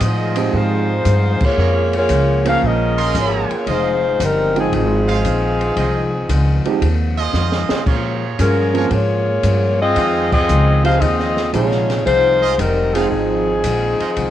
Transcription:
Already playing: F4 C5 D#5
0.00 F2 A2 D#3 F3 G#3 C4 D#4 G#4, kick, hi-hat pedal, ride
0.35 F3 G#3 C4 D#4 G4, ride
0.53 F2 G#2 D#3 G#3 C4 D#4 F4 C5, kick
1.05 F2 G2 D#3 G#3 C4, kick, hi-hat pedal, ride
1.41 A#3 F4 G#4 C#5, muted upright bass stroke, kick, crash
1.57 F2 A#2 F3 G#3 C#4 F4 G#4 A#4 C#5
1.93 A#3 F4 C#5, ride
1.97 G#4
2.09 C#2 A#2 F3 G#3 C#4, kick, hi-hat pedal, ride
2.45 F3 A#3 C#4 G#4 A#4 C5 F5, ride
2.62 A#1 A#2 F3 G#3 C#4 G#4 A#4 D#5, kick
2.98 F4 G#4 A#4 C6, ride
3.15 G#1 A#2 F3 G#3 A#3 C#4 F4 G#4 C#5, kick, hi-hat pedal, ride
3.50 muted upright bass stroke, ride
3.66 F1 F2 D#3 G#3 C4 D#4 F4 G#4 C5 D#5, kick, ride
4.19 G1 F2 D#3 G3 G#3 C4 D#4 A#4, kick, hi-hat pedal, ride
4.56 F3 G#3 C4 D#4 G#4 G5, ride
4.72 G#1 F2 D#3 F3 G#3 C4 D#4 G#4, kick, ride
5.08 F4 G#4 C5 F5, ride
5.24 A#1 F2 D#3 G#3 C4, kick, hi-hat pedal, ride
5.61 ride
5.76 C2 F2 D#3 G#3 C4 F4 G#4 C5 D#5, kick, ride
6.29 C#2 F2 D#3 G#3 C4, kick, hi-hat pedal, ride
6.65 F3 G#3 C4 D#4 G4, muted upright bass stroke, ride
6.81 D#2 F2 D#3 G#3 C4, kick, ride
7.17 F4 G#4 C5 D#5
7.33 F2 D#3 G#3 C4, snare, hi-hat pedal
7.52 snare
7.69 muted upright bass stroke, snare
7.85 A#2 F3 G#3 C#4 F4 G#4 A#4 C#5, kick, crash
8.39 G2 A#2 F3 G#3 C#4 F4 G#4 A#4, kick, hi-hat pedal, ride
8.74 F3 A#3 C4 C#4 F4 G#4 A#4 C#5, ride
8.90 G#2 A#2 F3 G#3 A#3 C#4 F4 G#4 C#5, kick, ride
9.43 G2 A#2 F3 G#3 C#4, kick, hi-hat pedal, ride
9.81 C4 F4 G#4 D#5
9.96 F2 D#3 G#3 C4 F4 G#4 C5 D#5, kick, ride
10.32 C4 F4 G#4 D#5, kick, crash
10.48 C#2 F2 D#3 G#3 C4, hi-hat pedal
10.84 F3 G#3 C4 D#4 F4 G4 G#4 C5 D#5 F5, ride
10.99 D#2 F2 D#3 C4 F4 G#4 D#5, kick, ride
11.03 G#3 C4
11.20 snare
11.37 snare
11.52 A#1 F2 C3 D#3 F3 G#3 D#4 F4 G#4 C#5, kick, hi-hat pedal, ride
11.56 C4
11.71 snare
11.90 snare, ride
12.05 C2 F2 D#3 G#3 D#4 F4 C5, kick, ride
12.10 C4
12.42 F4 G#4 C5 D#5
12.58 F1 F2 D#3 G3 G#3 C4 D#4 A#4, kick, hi-hat pedal, ride
12.94 F3 G#3 C4 D#4 F4 G#4 C5 F5 G5, ride
13.09 G#1 F2 D#3 F3 C4 D#4 G#4, kick
13.13 G#3 C4
13.64 A#1 F2 D#3 G#3 C4, kick, hi-hat pedal, ride
14.00 F4 G#4 C5 D#5, muted upright bass stroke, ride
14.16 C2 F2 D#3 G#3 C4, kick, ride

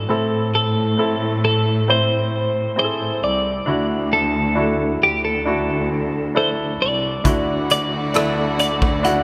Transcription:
Already playing: E3 D4 E4 F#4 G#4 A4 B4
0.08 A2 C4 E4 A4
0.55 A4
0.98 C4 E4 A4
1.45 A4
1.88 C4 E4 C5
2.76 C4 E4 G#4 C5
2.84 A4
3.22 C2 D5
3.66 D2 D3 D4 E4 F#4
4.13 A4
4.55 D4 E4 F#4
5.01 D2 G4
5.25 A4
5.45 D4 E4 F#4
6.35 D4 E4 A4 C5
6.80 C2 D5
7.24 D2 D3 A3 D4 E4 F#4, kick, closed hi-hat
7.70 D5, closed hi-hat
8.14 D4 E4 A4, cross-stick, closed hi-hat
8.59 D5, closed hi-hat
8.82 kick
9.03 D4 E4 F#4 F#5, closed hi-hat

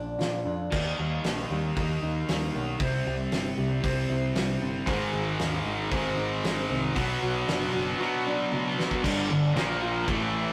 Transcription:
Already playing: A#1 A#2 D4
0.19 A#1 F4, snare, open hi-hat
0.45 F2 D4
0.70 D#2 D#3 A#3 D#4, kick, crash
0.99 D#2 G3
1.24 A#1 D#4, snare, open hi-hat
1.50 D#2 G3
1.77 D#2 D#3 A#3 D#4, kick, open hi-hat
2.03 D#2 D#4
2.28 D#2 G3, snare, open hi-hat
2.54 B1 A#3
2.79 C2 C3 G3 C4, kick, open hi-hat
3.06 C2 G3
3.32 G1 E4, snare, open hi-hat
3.58 C2 G3
3.81 C2 C3 G3 C4, kick, open hi-hat
3.86 C4
4.09 C2 E4
4.35 C2 G3, snare, open hi-hat
4.61 G1 C4
4.86 G#1 G#2 D#3 G#3, kick, open hi-hat
5.13 G#1 G#3
5.39 D#2 D#4, snare, open hi-hat
5.65 G#1 G#3
5.90 G#1 G#2 D#3 G#3 C4, kick, open hi-hat
6.17 G#1 D#4
6.43 G#1 G#3, snare, open hi-hat
6.69 C2 C4
6.94 B1 B2 F#3 B3, kick, open hi-hat
7.22 B1 F#3
7.48 F#1 D4, snare, open hi-hat
7.73 F#1 F#3
7.98 B2 F#3 B3
8.02 B3
8.26 D4
8.52 F#3, high tom
8.77 B3, snare
8.91 kick
9.03 G1 G2 D3 G3, kick, crash
9.30 G1 G2 D3
9.55 A#1 A#2 F3 A#3, snare, crash
9.82 F4
10.08 A1 A2 E3 A3, kick, crash
10.33 E3

